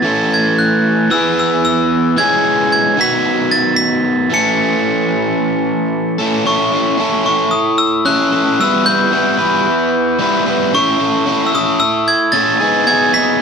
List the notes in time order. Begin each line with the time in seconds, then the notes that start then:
Already playing: A6
0.02 E3 A3 C#4 A4
0.34 G#6
0.59 F#6
1.10 E3 B3 E4 G#4 E6
1.39 E6
1.65 E6
2.17 E3 G#3 C#4 G#4 G#6
2.72 G#6
2.97 D#3 B3 D#4 F#4 B6
3.51 A6
3.76 B6
4.30 E3 A3 C#4 A4 C#7
6.18 E3 A3 C#4 A4
6.45 C#4 E4 A4 C#6
6.72 E4 A4
6.98 C#4 E4 A4
7.26 E4 A4 C#6
7.51 D#6
7.78 E6
8.05 C#4 E4 A4 F#6
8.32 E4 A4
8.60 G3 B3 E4 B4 E6
8.86 B3 E4 B4 G6
9.12 G3 B3 E4 B4
9.39 B3 E4 B4
10.19 G3 B3 E4 B4
10.46 B3 E4 B4
10.73 C#4 E4 A4 C#6
10.99 E4 A4
11.26 C#4 E4 A4
11.46 E6
11.53 E4 A4 D#6
11.80 E6
12.08 G#6
12.32 C#4 E4 A6
12.36 A4
12.61 B3 D#4 G#4
12.87 B3 D#4 G#4 G#6
13.13 D#4 G#4 B6